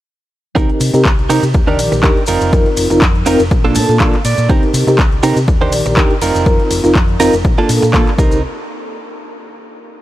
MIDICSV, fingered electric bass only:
0, 0, Header, 1, 3, 480
1, 0, Start_track
1, 0, Tempo, 491803
1, 548, Time_signature, 4, 2, 24, 8
1, 9779, End_track
2, 0, Start_track
2, 0, Title_t, "Fingered electric bass"
2, 0, Program_c, 0, 33
2, 549, Note_on_c, 0, 36, 98
2, 648, Note_off_c, 0, 36, 0
2, 785, Note_on_c, 0, 48, 81
2, 886, Note_off_c, 0, 48, 0
2, 915, Note_on_c, 0, 48, 98
2, 1000, Note_off_c, 0, 48, 0
2, 1027, Note_on_c, 0, 36, 84
2, 1216, Note_off_c, 0, 36, 0
2, 1262, Note_on_c, 0, 48, 81
2, 1364, Note_off_c, 0, 48, 0
2, 1393, Note_on_c, 0, 48, 88
2, 1479, Note_off_c, 0, 48, 0
2, 1508, Note_on_c, 0, 39, 87
2, 1743, Note_off_c, 0, 39, 0
2, 1743, Note_on_c, 0, 34, 94
2, 1845, Note_off_c, 0, 34, 0
2, 1874, Note_on_c, 0, 34, 88
2, 1960, Note_off_c, 0, 34, 0
2, 2226, Note_on_c, 0, 29, 82
2, 2327, Note_off_c, 0, 29, 0
2, 2355, Note_on_c, 0, 29, 85
2, 2440, Note_off_c, 0, 29, 0
2, 2466, Note_on_c, 0, 41, 99
2, 2567, Note_off_c, 0, 41, 0
2, 2705, Note_on_c, 0, 29, 86
2, 2806, Note_off_c, 0, 29, 0
2, 2835, Note_on_c, 0, 29, 94
2, 2920, Note_off_c, 0, 29, 0
2, 2947, Note_on_c, 0, 41, 89
2, 3135, Note_off_c, 0, 41, 0
2, 3185, Note_on_c, 0, 29, 84
2, 3286, Note_off_c, 0, 29, 0
2, 3316, Note_on_c, 0, 29, 90
2, 3401, Note_off_c, 0, 29, 0
2, 3427, Note_on_c, 0, 34, 88
2, 3666, Note_on_c, 0, 46, 94
2, 3681, Note_off_c, 0, 34, 0
2, 3766, Note_off_c, 0, 46, 0
2, 3796, Note_on_c, 0, 46, 92
2, 3880, Note_off_c, 0, 46, 0
2, 3908, Note_on_c, 0, 34, 83
2, 4007, Note_off_c, 0, 34, 0
2, 4145, Note_on_c, 0, 46, 85
2, 4246, Note_off_c, 0, 46, 0
2, 4274, Note_on_c, 0, 46, 84
2, 4360, Note_off_c, 0, 46, 0
2, 4387, Note_on_c, 0, 36, 96
2, 4487, Note_off_c, 0, 36, 0
2, 4623, Note_on_c, 0, 48, 89
2, 4725, Note_off_c, 0, 48, 0
2, 4752, Note_on_c, 0, 48, 94
2, 4839, Note_off_c, 0, 48, 0
2, 4867, Note_on_c, 0, 36, 88
2, 5055, Note_off_c, 0, 36, 0
2, 5104, Note_on_c, 0, 48, 81
2, 5205, Note_off_c, 0, 48, 0
2, 5233, Note_on_c, 0, 48, 91
2, 5319, Note_off_c, 0, 48, 0
2, 5347, Note_on_c, 0, 39, 88
2, 5586, Note_off_c, 0, 39, 0
2, 5586, Note_on_c, 0, 34, 99
2, 5686, Note_off_c, 0, 34, 0
2, 5717, Note_on_c, 0, 34, 93
2, 5801, Note_off_c, 0, 34, 0
2, 5827, Note_on_c, 0, 39, 84
2, 5927, Note_off_c, 0, 39, 0
2, 6065, Note_on_c, 0, 29, 87
2, 6166, Note_off_c, 0, 29, 0
2, 6198, Note_on_c, 0, 29, 82
2, 6282, Note_off_c, 0, 29, 0
2, 6306, Note_on_c, 0, 41, 103
2, 6406, Note_off_c, 0, 41, 0
2, 6546, Note_on_c, 0, 29, 86
2, 6646, Note_off_c, 0, 29, 0
2, 6677, Note_on_c, 0, 29, 96
2, 6761, Note_off_c, 0, 29, 0
2, 6787, Note_on_c, 0, 41, 86
2, 6976, Note_off_c, 0, 41, 0
2, 7026, Note_on_c, 0, 29, 89
2, 7126, Note_off_c, 0, 29, 0
2, 7156, Note_on_c, 0, 29, 85
2, 7241, Note_off_c, 0, 29, 0
2, 7268, Note_on_c, 0, 34, 98
2, 7367, Note_off_c, 0, 34, 0
2, 7508, Note_on_c, 0, 46, 92
2, 7607, Note_off_c, 0, 46, 0
2, 7639, Note_on_c, 0, 46, 84
2, 7722, Note_off_c, 0, 46, 0
2, 7748, Note_on_c, 0, 34, 97
2, 7847, Note_off_c, 0, 34, 0
2, 7987, Note_on_c, 0, 36, 96
2, 8211, Note_off_c, 0, 36, 0
2, 9779, End_track
3, 0, Start_track
3, 0, Title_t, "Muted fingered electric bass strokes"
3, 7395, Note_on_c, 9, 29, 43
3, 7493, Note_off_c, 9, 29, 0
3, 9779, End_track
0, 0, End_of_file